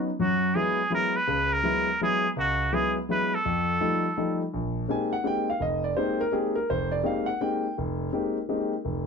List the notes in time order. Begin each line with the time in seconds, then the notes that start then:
0.19 F#2 F#3 F#4
0.55 F#3 G#3 B3 E4 G#4
0.90 F#3 G#3 B3 E4
0.95 A#4
1.16 B4
1.27 C#2 C#3
1.53 A#4
1.64 F#3 G#3 B3 E4
2.01 F#3 G#3 B3 E4 G#4
2.36 C#2 F#4
2.73 F#3 G#3 B3 E4 G#4
3.09 F#3 G#3 B3 E4 B4
3.35 A4
3.45 F2
3.81 F3 G3 A3 D#4
4.17 F3 G3 A3 D#4
4.54 A#1
4.88 G#3 A#3 C4 D#4 G4 G#5
5.13 F#5
5.24 G#3 A#3 C4 D#4 G4 G5
5.50 F5
5.60 F1 D#5
5.84 D5
5.97 G#3 A#3 C4 D#4 G4 C5
6.21 A#4
6.32 G#3 A#3 C4 D#4 G4 G#4
6.56 A#4
6.70 F1 C5
6.91 D5
7.03 G#3 A#3 C4 D#4 G4 F5
7.26 F#5
7.41 G#3 A#3 C4 D#4 G4 G5
7.78 F1
8.12 G#3 A#3 C4 D#4 G4
8.49 G#3 A#3 C4 D#4 G4
8.85 F1